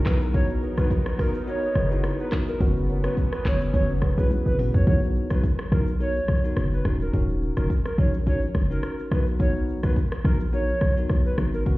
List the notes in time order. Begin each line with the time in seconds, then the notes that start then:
Already playing: A#4
0.05 B1 B3 D#4 F#4 A#4 B4, cross-stick, clap, shaker
0.22 shaker
0.34 B3 D#4 F#4 A#4 C#5, kick, shaker
0.50 shaker
0.63 G#4 B4, shaker
0.77 A#1 B3 D#4 F#4 A#4 B4 C#5, cross-stick, shaker
0.91 F#4 B4, kick, shaker
1.06 cross-stick, shaker
1.19 B3 D#4 F#4 A#4, kick, cross-stick, open hi-hat, shaker
1.34 shaker
1.47 B3 D#4 F#4 A#4 C#5, shaker
1.63 shaker
1.75 F#1 G#4 B4, cross-stick, shaker
1.91 B3 D#4 E4 F#4 G#4 A#4, shaker
2.04 cross-stick, shaker
2.20 B4, shaker
2.32 B3 D#4 F#4 A#4, kick, cross-stick, clap, shaker
2.48 A#4, shaker
2.60 F#1 F#3 B3 C#4 F#4 B4, kick, shaker
2.76 shaker
2.89 A#4 C#5, shaker
3.04 B3 C#4 F#4 A#4 B4 C#5, cross-stick, shaker
3.17 F#4 B4, kick, shaker
3.33 B4, cross-stick, shaker
3.45 F#1 B3 C#4 F#4 B4 C#5, kick, cross-stick, clap, open hi-hat, shaker
3.61 shaker
3.74 F#1 B3 C#4 F#4 B4 C#5, kick, shaker
3.90 shaker
4.01 G#4 B4, kick, cross-stick, shaker
4.18 B1 B3 C#4 E4 F#4 G#4 B4, shaker
4.30 high tom, shaker
4.46 G#1 B4, shaker
4.58 B3 C#4 F#4 G#4 B4, mid tom, open hi-hat, shaker
4.74 A#1 C#5, floor tom, shaker
4.87 B1 B3 D#4 F#4 A#4 C#5, kick, shaker
5.03 shaker
5.16 shaker
5.30 A#1 B3 D#4 F#4 A#4 B4, cross-stick, shaker
5.43 kick, shaker
5.59 cross-stick, shaker
5.72 B1 B3 D#4 F#4 A#4, kick, cross-stick, shaker
5.87 shaker
6.00 B3 D#4 F#4 A#4 C#5, shaker
6.16 shaker
6.28 B1, cross-stick, shaker
6.44 B3 D#4 F#4 A#4, shaker
6.57 F#1, cross-stick, shaker
6.73 B4, shaker
6.85 D#1 C#4 D#4 F#4 A#4, kick, cross-stick, shaker
7.01 A#4, shaker
7.13 D#1 C#4 D#4 F#4 A#4, kick, shaker
7.29 shaker
7.42 shaker
7.57 F#1 C#4 D#4 F#4 A#4, cross-stick, shaker
7.70 kick, shaker
7.86 A#4, cross-stick, shaker
7.98 A#1 C#4 D#4 F#4 A#4 C#5, kick, shaker
8.14 shaker
8.26 C#4 D#4 F#4 A#4 C#5, kick, shaker
8.43 shaker
8.54 F#1, kick, cross-stick, shaker
8.70 C#4 D#4 F#4 A#4, shaker
8.83 A#4, cross-stick, shaker
8.99 shaker
9.11 B1 B3 D#4 F#4 A#4 B4, cross-stick, shaker
9.27 shaker
9.39 B3 D#4 F#4 A#4 C#5, kick, shaker
9.56 shaker
9.69 shaker
9.83 B1 B3 D#4 F#4 A#4 B4, cross-stick, shaker
9.96 kick, shaker
10.12 cross-stick, shaker
10.24 A#1 B3 D#4 F#4 A#4, kick, cross-stick, shaker
10.40 shaker
10.53 B3 D#4 F#4 A#4 C#5, shaker
10.69 shaker
10.81 B1, cross-stick, shaker
10.96 B3 D#4 F#4 A#4, shaker
11.09 B1, cross-stick, shaker
11.26 B4, shaker
11.38 G#1 B3 D#4 F#4 A#4, kick, cross-stick, shaker
11.54 A#4, shaker
11.66 F#1 B3 C#4 F#4 B4, kick, shaker